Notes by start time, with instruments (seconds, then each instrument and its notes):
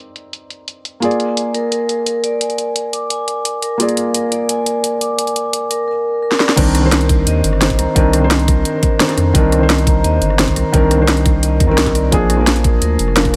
Already playing: felt piano C4 D#4 A#4 D5
0.16 closed hi-hat
0.33 closed hi-hat
0.50 closed hi-hat
0.68 closed hi-hat
0.85 closed hi-hat
1.00 felt piano A#3 F4 G#4, vibraphone G#5, closed hi-hat
1.05 felt piano D5
1.11 closed hi-hat
1.20 closed hi-hat
1.37 closed hi-hat
1.54 vibraphone A#4, closed hi-hat
1.72 vibraphone A#4, closed hi-hat
1.89 closed hi-hat
2.06 vibraphone A#4, closed hi-hat
2.24 vibraphone D5, closed hi-hat
2.41 vibraphone G#5, closed hi-hat
2.50 closed hi-hat
2.58 closed hi-hat
2.76 closed hi-hat
2.93 vibraphone D6, closed hi-hat
3.10 vibraphone G#5, closed hi-hat
3.28 closed hi-hat
3.45 closed hi-hat
3.62 vibraphone A#4, closed hi-hat
3.78 felt piano A#3 F4 G#4, vibraphone A#4, closed hi-hat
3.82 felt piano D5
3.89 closed hi-hat
3.97 closed hi-hat
4.14 vibraphone A#4, closed hi-hat
4.32 vibraphone D5, closed hi-hat
4.49 vibraphone G#5, closed hi-hat
4.66 closed hi-hat
4.84 closed hi-hat
5.01 vibraphone D6, closed hi-hat
5.18 vibraphone G#5, closed hi-hat
5.27 closed hi-hat
5.36 closed hi-hat
5.53 closed hi-hat
5.70 vibraphone A#4, closed hi-hat
5.88 vibraphone A#4
6.23 vibraphone A#4
6.31 snare
6.40 vibraphone D5, snare
6.49 snare
6.56 sub bass C2, felt piano D#3 C4 D4 A#4, vibraphone A#4, kick, closed hi-hat, crash
6.75 cross-stick, closed hi-hat
6.81 felt piano D#3 C4
6.86 felt piano C5
6.92 snare, closed hi-hat
7.01 closed hi-hat
7.09 vibraphone C5, kick, closed hi-hat
7.27 sub bass D#2, vibraphone D#5, closed hi-hat
7.44 sub bass G1, closed hi-hat
7.53 cross-stick
7.60 felt piano D#3 C4 C5, snare, closed hi-hat
7.70 kick, closed hi-hat
7.79 sub bass C2, vibraphone A#5, cross-stick, closed hi-hat
7.95 sub bass C2, felt piano D#3 C4 D4 A#4, vibraphone D#5, kick, closed hi-hat
8.13 cross-stick, closed hi-hat
8.20 felt piano D#3 C4
8.24 felt piano C5
8.31 snare, closed hi-hat
8.39 closed hi-hat
8.48 vibraphone A#4, kick, cross-stick, closed hi-hat
8.65 vibraphone A#4, closed hi-hat
8.83 kick, closed hi-hat
8.99 felt piano D#3 C4 D4 C5, snare, closed hi-hat
9.09 snare, closed hi-hat
9.17 sub bass F2, vibraphone C5, cross-stick, closed hi-hat
9.34 sub bass C2, felt piano D#3 C4 D4 A#4, vibraphone D#5, kick, closed hi-hat
9.52 cross-stick, closed hi-hat
9.59 felt piano D#3 C4
9.63 felt piano C5
9.70 snare, closed hi-hat
9.78 closed hi-hat
9.87 vibraphone A#5, kick, closed hi-hat
10.04 sub bass D#2, vibraphone D#5, closed hi-hat
10.21 sub bass G1, closed hi-hat
10.30 cross-stick
10.38 felt piano D#3 C4 C5, snare, closed hi-hat
10.48 kick, closed hi-hat
10.56 sub bass C2, vibraphone A#4, cross-stick, closed hi-hat
10.72 sub bass C2, felt piano D#3 C4 D4 A#4, vibraphone A#4, kick, closed hi-hat
10.91 cross-stick, closed hi-hat
10.97 felt piano D#3 C4 D4
11.02 felt piano C5
11.08 snare, closed hi-hat
11.17 closed hi-hat
11.26 vibraphone C5, kick, cross-stick, closed hi-hat
11.43 vibraphone D#5, closed hi-hat
11.60 sub bass F2, vibraphone A#4, kick, closed hi-hat
11.67 sub bass C2, felt piano D#3 C4
11.71 felt piano A#4
11.78 vibraphone A#4, snare, closed hi-hat
11.86 kick, snare, closed hi-hat
11.95 vibraphone D5, cross-stick, closed hi-hat
12.11 sub bass A#1, felt piano F3 A#3 D4 G#4, vibraphone G#5, kick, closed hi-hat
12.30 cross-stick, closed hi-hat
12.36 felt piano F3 A#3 D4
12.40 felt piano A#4
12.47 snare, closed hi-hat
12.56 closed hi-hat
12.64 vibraphone A#4, kick, closed hi-hat
12.82 sub bass D2, vibraphone A#4, closed hi-hat
12.99 sub bass F1, closed hi-hat
13.08 cross-stick
13.15 felt piano F3 A#3 D4 A#4, vibraphone A#4, snare, closed hi-hat
13.25 kick, closed hi-hat